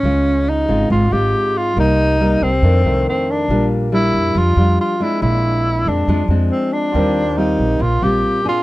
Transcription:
<<
  \new Staff \with { instrumentName = "Grand piano" } { \time 4/4 \key bes \lydian \tempo 4 = 139 r1 | r1 | r1 | r1 |
<f' g' bes' c''>1 | }
  \new Staff \with { instrumentName = "Tenor saxophone" } { \time 4/4 \key bes \lydian des'4 ees'4 f'8 g'4 f'8 | ees'4. c'4. c'8 d'8~ | d'8 r8 e'4 f'4 f'8 e'8 | e'4. d'4 r8 c'8 d'8~ |
d'4 ees'4 f'8 g'4 f'8 | }
  \new Staff \with { instrumentName = "Nylon-string guitar" } { \time 4/4 \key bes \lydian << { <aes f'>4. <aes c' f'>4 <aes c' f'>4. | <g bes ees'>4 <g bes ees'>8 r8 <ees a d'>8 <ees a d'>4. | <g d' f'>4 <g d'>4. <g d' f'>4 <aes c' d'>8~ | <aes c' d'>4. <aes c' d'>8 <aes c' d'>8 <aes c' d'>4. |
<g c' f'>8 r8 <g c' f'>4 r8 <g c' f'>4 <c' d' aes'>8 | } \\ { des2 aes,2 | c2 f,2 | bes,2 f2 | bes,2 f2 |
ees2 bes,2 | } >> }
  \new Staff \with { instrumentName = "Upright bass" } { \clef bass \time 4/4 \key bes \lydian des,4. aes,,8 aes,,8 aes,,8 r4 | c,4. c,8 f,8 c,8 r4 | bes,,4. f,8 f,8 f,8 r4 | bes,,4. f,8 f,8 f,8 r4 |
ees,4. bes,,8 bes,,8 bes,,8 r4 | }
>>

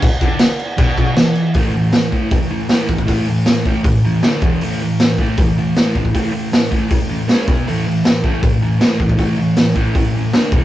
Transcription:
<<
  \new Staff \with { instrumentName = "Distorted electric guitar" } { \clef bass \time 4/4 \key d \major \tempo 4 = 157 r8 d8 r4 b,4 e4 | <a, e a>8 <a, e>8 <a, e>8 <a, e a>8 <a, e>8 <a, e>8 <a, e a>8 <a, e>8 | <a, e a>8 <a, e>8 <a, e>8 <a, e a>8 <a, e>8 <a, e>8 <d a d'>8 <e, b, e>8 | <a, e a>8 <a, e>8 <a, e>8 <a, e a>8 <a, e>8 <a, e>8 <a, e a>8 <a, e>8 |
<a, e a>8 <a, e>8 <a, e>8 <a, e a>8 <a, e>8 <a, e>8 <cis gis cis'>8 <b, fis b>8 | <a, e a>8 <a, e>8 <a, e>8 <a, e a>8 <a, e>8 <a, e>8 <a, e a>8 <a, e>8 | <a, e a>8 <a, e>8 <a, e>8 <a, e a>8 <a, e>8 <a, e>8 <d a d'>8 <e, b, e>8 | }
  \new DrumStaff \with { instrumentName = "Drums" } \drummode { \time 4/4 <cymc bd>8 <cymc bd>8 <cymc sn>8 cymc8 <cymc bd>8 <cymc bd>8 <cymc sn>8 cymc8 | <hho bd>4 <hho sn>8 bd8 <hho bd>4 <hho sn>8 bd16 bd16 | <hho bd>4 <hho sn>8 bd8 <hho bd>4 <hho sn>8 bd8 | hho4 <hho sn>8 bd8 <hho bd>4 <hho sn>8 bd16 bd16 |
<hho bd>4 <hho sn>8 bd8 <hho bd>4 <hho sn>8 bd8 | hho4 <hho sn>8 bd8 <hho bd>4 <hho sn>8 bd16 bd16 | <hho bd>4 <hho sn>8 bd8 <hho bd>4 <hho sn>8 bd8 | }
>>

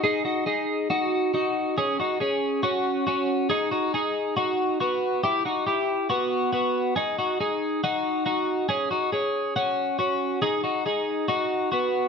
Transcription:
\new Staff \with { instrumentName = "Clean electric guitar" } { \time 4/4 \key b \major \tempo 4 = 139 <dis' gis'>8 <dis' fis'>8 <dis' gis'>4 <dis' fis'>4 <dis' fis'>4 | <cis' gis'>8 <dis' fis'>8 <cis' gis'>4 <cis' fis'>4 <cis' fis'>4 | <dis' gis'>8 <dis' fis'>8 <dis' gis'>4 <dis' fis'>4 <b fis'>4 | <e' g'>8 <dis' fis'>8 <e' g'>4 <b fis'>4 <b fis'>4 |
<dis' gis'>8 <dis' fis'>8 <dis' gis'>4 <dis' fis'>4 <dis' fis'>4 | <cis' gis'>8 <dis' fis'>8 <cis' gis'>4 <cis' fis'>4 <cis' fis'>4 | <dis' gis'>8 <dis' fis'>8 <dis' gis'>4 <dis' fis'>4 <b fis'>4 | }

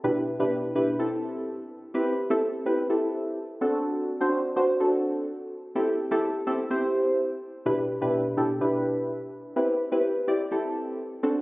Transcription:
\new Staff \with { instrumentName = "Synth stab" } { \time 4/4 \key c \lydian \tempo 4 = 126 <b, d' e' g' b'>8 r16 <b, d' e' g' b'>8 r16 <b, d' e' g' b'>16 r16 <c' e' g' a'>4 r4 | <c' e' g' b'>8 r16 <c' e' g' a'>8 r16 <c' e' g' b'>16 r16 <c' e' g' a'>4 r8 <c' d' fis' a'>8~ | <c' d' fis' a'>8 r16 <c' d' fis' c''>8 r16 <c' d' fis' c''>16 r16 <c' d' fis' a'>4 r4 | <c' e' g' a'>8 r16 <c' e' g' a'>8 r16 <c' e' g' a'>16 r16 <c' e' g' c''>4 r4 |
<b, d' e' g' b'>8 r16 <b, d' e' g' b'>8 r16 <b, d' e' g' a'>16 r16 <b, d' e' g' b'>4 r4 | <c' e' g' b'>8 r16 <c' e' g' b'>8 r16 <c' e' g' d''>16 r16 <c' e' g' a'>4 r8 <c' d' fis' a'>8 | }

